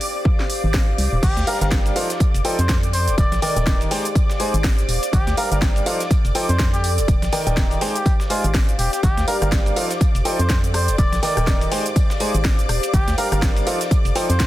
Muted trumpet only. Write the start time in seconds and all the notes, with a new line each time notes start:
1.23 G4
1.47 A#4
1.61 A#4
2.59 C5
2.94 C5
3.18 D5
3.42 D5
5.13 G4
5.37 A#4
5.52 A#4
6.49 C5
6.74 G4
7.95 G4
8.30 F4
8.79 G4
8.93 G4
9.03 G4
9.28 A#4
9.42 A#4
10.39 C5
10.74 C5
10.98 D5
11.23 D5
12.94 G4
13.18 A#4
13.32 A#4
14.30 C5